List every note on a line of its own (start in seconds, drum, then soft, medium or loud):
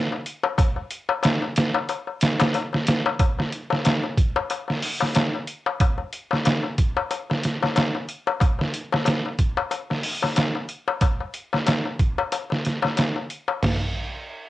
0.12 darbuka tek soft
0.26 closed hi-hat medium
0.43 darbuka tek medium
0.58 kick loud
0.58 closed hi-hat medium
0.58 darbuka tek medium
0.76 darbuka tek soft
0.91 closed hi-hat medium
1.09 darbuka tek medium
1.23 snare loud
1.23 closed hi-hat medium
1.23 darbuka tek medium
1.42 darbuka tek soft
1.56 snare loud
1.56 closed hi-hat medium
1.74 darbuka tek medium
1.89 closed hi-hat medium
1.89 darbuka tek medium
2.07 darbuka tek soft
2.21 snare loud
2.21 closed hi-hat medium
2.40 snare loud
2.40 closed hi-hat medium
2.40 darbuka tek medium
2.54 closed hi-hat medium
2.54 darbuka tek medium
2.73 snare medium
2.73 darbuka tek soft
2.87 snare loud
2.87 closed hi-hat medium
3.06 darbuka tek medium
3.19 kick loud
3.19 closed hi-hat medium
3.19 darbuka tek medium
3.39 snare soft
3.39 darbuka tek soft
3.52 closed hi-hat medium
3.70 snare medium
3.70 darbuka tek medium
3.85 snare loud
3.85 closed hi-hat medium
3.85 darbuka tek medium
4.03 darbuka tek soft
4.17 kick medium
4.17 closed hi-hat medium
4.36 darbuka tek medium
4.50 closed hi-hat medium
4.50 darbuka tek medium
4.68 snare soft
4.68 darbuka tek soft
4.82 open hi-hat medium
5.01 snare soft
5.01 darbuka tek medium
5.15 snare loud
5.15 closed hi-hat medium
5.15 darbuka tek medium
5.35 darbuka tek soft
5.47 closed hi-hat medium
5.66 darbuka tek medium
5.80 kick loud
5.80 closed hi-hat medium
5.80 darbuka tek medium
5.98 darbuka tek soft
6.13 closed hi-hat medium
6.31 snare soft
6.31 darbuka tek medium
6.45 snare loud
6.45 closed hi-hat medium
6.45 darbuka tek medium
6.63 darbuka tek soft
6.78 kick medium
6.78 closed hi-hat medium
6.97 darbuka tek medium
7.11 closed hi-hat medium
7.11 darbuka tek medium
7.30 snare medium
7.30 darbuka tek soft
7.43 snare soft
7.43 closed hi-hat medium
7.62 snare soft
7.62 darbuka tek medium
7.76 snare loud
7.76 closed hi-hat medium
7.76 darbuka tek medium
7.95 darbuka tek soft
8.09 closed hi-hat medium
8.27 darbuka tek medium
8.40 kick loud
8.40 closed hi-hat medium
8.40 darbuka tek medium
8.59 snare soft
8.59 darbuka tek soft
8.74 closed hi-hat medium
8.92 snare medium
8.92 darbuka tek medium
9.05 snare loud
9.05 closed hi-hat medium
9.05 darbuka tek medium
9.26 darbuka tek soft
9.39 kick medium
9.39 closed hi-hat medium
9.57 darbuka tek medium
9.71 closed hi-hat medium
9.71 darbuka tek medium
9.90 snare soft
9.90 darbuka tek soft
10.03 open hi-hat medium
10.23 snare soft
10.23 darbuka tek medium
10.36 snare loud
10.36 closed hi-hat medium
10.36 darbuka tek medium
10.55 darbuka tek soft
10.69 closed hi-hat medium
10.88 darbuka tek medium
11.01 kick loud
11.01 closed hi-hat medium
11.01 darbuka tek medium
11.21 darbuka tek soft
11.34 closed hi-hat medium
11.53 snare soft
11.53 darbuka tek medium
11.67 snare loud
11.67 closed hi-hat medium
11.67 darbuka tek medium
11.85 darbuka tek soft
11.99 kick medium
11.99 closed hi-hat medium
12.18 darbuka tek medium
12.32 closed hi-hat medium
12.32 darbuka tek medium
12.50 snare medium
12.50 darbuka tek soft
12.65 snare soft
12.65 closed hi-hat medium
12.82 snare soft
12.82 darbuka tek medium
12.97 snare medium
12.97 closed hi-hat medium
12.97 darbuka tek medium
13.16 darbuka tek soft
13.30 closed hi-hat medium
13.48 darbuka tek medium
13.63 snare medium
13.63 floor tom medium
13.63 crash medium